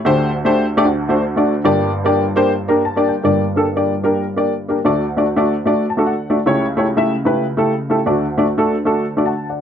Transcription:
0.05 D2 D3 A3 D4 G4 C5
0.45 A3 D4 G4 C5
0.77 A3 D4 G4 D5
0.85 D2 D3
1.09 A3 D4 F#4 C5
1.36 A3 D4 F#4 D5
1.64 G1 G2 A#3 D4 G4 D5
2.04 A#3 D4 G4 D5
2.36 A#3 D4 G4 C5
2.68 A#3 D4 G4 A#4 A#5
2.85 A5
2.96 A#3 D4 G4 D5
3.08 G5
3.23 G1 G2 A#3 D4 G4 D5
3.56 A#3 D4 G4 A4
3.75 A#3 D4 G4 D5
4.03 A#3 D4 G4 A#4
4.36 A#3 D4 G4 D5
4.68 A#3 D4 G4 A#4
4.85 D2 D3 A3 D4 F#4 D5
5.17 A3 D4 F#4 D5
5.36 A3 D4 F#4 D5
5.65 A3 D4 F#4 D5
5.90 A5
5.97 A3 D4 F#4 A4
6.06 F#5
6.30 A3 D4 F#4 D5
6.46 C#2 C#3 A3 E4 G4 C#5
6.77 A3 E4 G4 C#5
6.97 A3 E4 G4 E5
7.25 A3 E4 G4 B4
7.57 A3 E4 G4 A4
7.90 A3 E4 G4 A4
8.06 D2 D3 A3 D4 F#4 D5
8.38 A3 D4 F#4 D5
8.58 A3 D4 F#4 A4
8.85 A3 D4 F#4 A4
9.17 A3 D4 F#4 D5
9.26 F#5 A5
9.49 D5 F#5

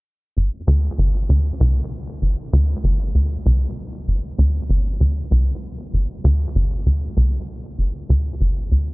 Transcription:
0.36 G1
0.67 D2
0.98 G1
1.29 D2
1.60 C2
2.22 G1
2.53 D2
2.84 G1
3.15 D2
3.46 C2
4.08 G1
4.38 D2
4.69 G1
5.00 D2
5.31 C2
5.93 G1
6.24 D2
6.55 G1
6.86 D2
7.17 C2
7.79 G1
8.10 D2
8.41 G1
8.72 D2

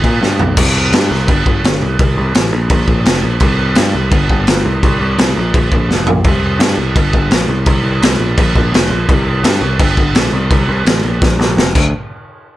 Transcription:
0.04 A#2, kick, crash
0.22 G2, snare
0.39 B1, floor tom
0.57 C2, kick, crash
0.93 G2, snare, crash
1.11 C2
1.28 G1, kick, crash
1.46 G1, kick
1.64 G1, snare, crash
1.82 C2
1.99 C2, kick, crash
2.17 C2
2.35 A1, snare, crash
2.52 A#1
2.70 A#1, kick, crash
2.88 A#1, kick
3.05 F1, snare, crash
3.24 A#1
3.40 C2, kick, crash
3.75 G2, snare, crash
3.94 C2
4.11 G1, kick, crash
4.29 G1, kick
4.47 G1, snare, crash
4.65 C2
4.83 C2, kick, crash
5.01 C2
5.18 C2, snare, crash
5.36 A#1
5.54 A#1, kick, crash
5.72 A#1, kick
5.89 F1, snare
6.06 A#1, floor tom
6.24 C2, kick, crash
6.59 G2, snare, crash
6.77 C2
6.96 G1, kick, crash
7.13 G1, kick
7.31 A#1, snare, crash
7.48 C2
7.66 C2, kick, crash
7.83 C2
8.02 C2, snare, crash
8.19 A#1
8.38 A#1, kick, crash
8.55 A#1, kick
8.72 F1, snare, crash
8.90 A#1
9.09 C2, kick, crash
9.44 G2, snare, crash
9.61 C2
9.79 G1, kick, crash
9.97 G1, kick
10.15 A#1, snare, crash
10.32 C2
10.51 C2, kick, crash
10.68 C2
10.85 A1, snare, crash
11.04 A#1
11.22 A#1, kick, snare
11.39 A#1, snare
11.57 F1, snare
11.75 D2, kick, crash

